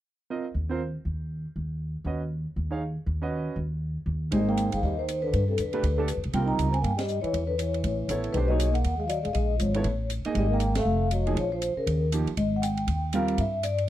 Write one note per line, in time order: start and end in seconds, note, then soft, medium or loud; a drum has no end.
0.30 0.44 C4 soft
0.30 0.44 F4 soft
0.30 0.44 A#4 soft
0.30 0.44 D#5 medium
0.54 0.94 D#2 medium
0.69 0.79 C4 medium
0.69 0.79 F4 medium
0.69 0.79 A#4 medium
0.69 0.79 C5 medium
1.05 1.44 D#2 medium
1.56 1.95 D#2 medium
2.04 2.44 D#2 medium
2.04 2.19 C#4 soft
2.04 2.20 F#4 soft
2.04 2.20 B4 soft
2.04 2.20 D#5 medium
2.56 2.96 D#2 medium
2.71 2.80 D#4 medium
2.71 2.80 G#4 soft
2.71 2.80 C#5 soft
2.71 2.81 F5 medium
3.06 3.46 D#2 medium
3.22 3.55 C#4 medium
3.22 3.55 F#4 medium
3.22 3.55 B4 medium
3.22 3.55 D#5 medium
3.56 3.96 D#2 medium
4.06 4.30 D#2 medium
4.31 4.69 G#1 medium
4.31 4.40 G3 medium
4.31 5.01 A#3 soft
4.31 5.01 D#4 soft
4.31 5.02 G#4 soft
4.31 5.02 C5 medium
4.31 4.39 D#5 medium
4.31 kick soft
4.31 ride soft
4.48 4.71 A#3 medium
4.48 4.74 G5 medium
4.57 hi-hat pedal soft
4.57 ride medium
4.72 4.82 G1 medium
4.72 4.82 G#3 medium
4.72 4.82 F5 medium
4.72 ride medium
4.83 5.30 D#2 medium
4.83 4.97 G3 medium
4.83 4.99 D#5 medium
4.83 kick soft
4.98 5.21 D#3 medium
4.98 5.24 C5 medium
5.08 hi-hat pedal soft
5.08 ride medium
5.22 5.46 D3 medium
5.22 5.46 B4 medium
5.33 5.56 G2 medium
5.33 kick soft
5.33 ride soft
5.48 5.57 C3 medium
5.48 5.57 A4 medium
5.58 5.81 F2 medium
5.58 6.19 D3 medium
5.58 6.20 B4 medium
5.58 hi-hat pedal soft
5.58 ride medium
5.73 5.82 A3 medium
5.73 5.82 D4 medium
5.73 5.82 G4 medium
5.73 5.83 B4 medium
5.73 ride soft
5.83 6.14 D2 medium
5.83 kick soft
5.83 ride medium
5.98 6.07 A3 medium
5.98 6.07 D4 medium
5.98 6.08 G4 medium
5.98 6.08 A4 medium
6.08 hi-hat pedal medium
6.08 ride medium
6.17 6.24 F2 medium
6.24 6.33 B1 medium
6.24 ride soft
6.33 6.57 C2 medium
6.33 6.71 G3 soft
6.33 6.45 A#3 medium
6.33 6.71 C4 soft
6.33 6.71 F4 soft
6.33 6.71 A#4 medium
6.33 6.48 G5 loud
6.33 kick soft
6.33 ride soft
6.46 6.70 D#4 medium
6.46 6.71 A#5 loud
6.58 6.81 C#2 medium
6.58 hi-hat pedal soft
6.58 ride medium
6.71 6.80 C4 medium
6.71 6.83 G#5 medium
6.71 ride soft
6.81 7.21 G2 medium
6.81 6.96 A#3 medium
6.81 6.97 G5 medium
6.81 kick soft
6.81 ride soft
6.96 7.21 G3 medium
6.96 7.24 D#5 medium
6.96 snare medium
6.96 ride medium
7.08 hi-hat pedal soft
7.21 7.46 E3 medium
7.21 7.46 C#5 medium
7.21 muted upright bass stroke soft
7.21 ride soft
7.33 7.81 E2 medium
7.33 kick soft
7.33 ride medium
7.47 7.57 D3 medium
7.47 7.58 B4 medium
7.58 8.20 E3 medium
7.58 8.20 C#5 medium
7.58 hi-hat pedal medium
7.58 ride medium
7.74 ride soft
7.84 8.07 A1 medium
7.84 kick soft
7.84 ride medium
8.08 8.32 A1 medium
8.08 8.35 B3 medium
8.08 8.35 E4 medium
8.08 8.35 A4 medium
8.08 8.35 C#5 medium
8.08 hi-hat pedal medium
8.08 ride medium
8.24 ride soft
8.32 8.82 B1 medium
8.32 8.40 D#3 medium
8.32 8.49 A3 medium
8.32 8.40 B4 medium
8.32 kick soft
8.32 ride soft
8.37 8.49 D4 soft
8.37 8.49 G4 soft
8.37 8.49 C5 medium
8.48 8.71 F#3 medium
8.48 8.72 A#3 medium
8.48 8.72 D#4 soft
8.48 8.72 G#4 medium
8.48 8.75 D#5 medium
8.52 8.73 C#5 medium
8.60 hi-hat pedal medium
8.60 ride medium
8.72 8.96 A#3 medium
8.72 9.00 F#5 medium
8.72 ride soft
8.84 9.22 D#2 medium
8.84 kick soft
8.84 ride medium
8.98 9.06 G#3 medium
8.98 9.07 F5 medium
9.06 9.08 F3 soft
9.06 9.22 F#3 medium
9.06 9.10 D5 medium
9.06 9.23 D#5 medium
9.06 hi-hat pedal soft
9.06 ride medium
9.23 9.34 A1 medium
9.23 9.32 G#3 medium
9.23 9.35 F5 medium
9.23 ride soft
9.33 9.58 A#1 medium
9.33 9.57 G#3 medium
9.33 9.60 D#5 medium
9.33 kick soft
9.33 ride medium
9.58 9.83 G#1 medium
9.58 9.82 F3 medium
9.58 10.07 C#5 medium
9.58 hi-hat pedal medium
9.58 ride medium
9.74 9.84 B3 medium
9.74 9.84 E4 medium
9.74 9.85 A4 medium
9.74 9.85 C#5 medium
9.74 ride soft
9.84 10.22 A1 medium
9.84 kick soft
9.84 ride soft
10.10 hi-hat pedal medium
10.10 ride medium
10.25 10.59 A#3 medium
10.25 10.59 D#4 medium
10.25 10.59 G#4 medium
10.25 10.59 D#5 medium
10.25 muted upright bass stroke soft
10.25 ride soft
10.35 10.83 G#1 medium
10.35 10.50 G3 medium
10.35 10.52 D#5 loud
10.35 kick soft
10.35 ride soft
10.50 10.74 A#3 medium
10.50 10.75 G5 loud
10.60 hi-hat pedal medium
10.60 ride medium
10.75 11.09 A3 medium
10.75 11.10 F5 medium
10.75 snare medium
10.75 ride medium
10.85 11.33 F1 medium
11.11 11.35 F#3 medium
11.11 11.38 D#5 medium
11.11 hi-hat pedal medium
11.11 ride medium
11.26 11.35 F3 medium
11.26 11.35 A#3 medium
11.26 11.36 D#4 medium
11.26 11.36 G#4 medium
11.26 ride soft
11.36 11.74 A#1 medium
11.36 11.52 F3 medium
11.36 11.51 C#5 medium
11.36 kick soft
11.36 ride medium
11.52 11.76 F3 medium
11.52 11.78 C5 medium
11.62 hi-hat pedal soft
11.62 ride medium
11.76 12.09 C#3 medium
11.76 12.10 A#4 medium
11.76 muted upright bass stroke soft
11.86 12.24 D#2 medium
11.86 kick soft
11.86 ride medium
12.12 12.25 F3 medium
12.12 12.26 A#3 medium
12.12 12.26 D#4 soft
12.12 12.26 G4 medium
12.12 hi-hat pedal medium
12.12 ride medium
12.26 muted upright bass stroke soft
12.26 ride soft
12.37 12.85 G#1 medium
12.37 12.57 D#5 medium
12.37 kick soft
12.37 ride medium
12.56 12.62 F#5 medium
12.62 13.14 G5 medium
12.62 hi-hat pedal medium
12.62 ride medium
12.77 ride soft
12.87 13.35 D#2 medium
12.87 kick soft
12.87 ride medium
13.13 13.38 G3 medium
13.13 13.39 C4 medium
13.13 13.39 F4 medium
13.13 13.39 A#4 medium
13.13 13.37 F5 medium
13.13 hi-hat pedal medium
13.13 ride medium
13.28 ride soft
13.38 13.85 G2 medium
13.38 13.62 E5 medium
13.38 kick soft
13.38 ride medium
13.63 13.89 D5 medium
13.63 hi-hat pedal medium
13.63 ride medium
13.78 ride soft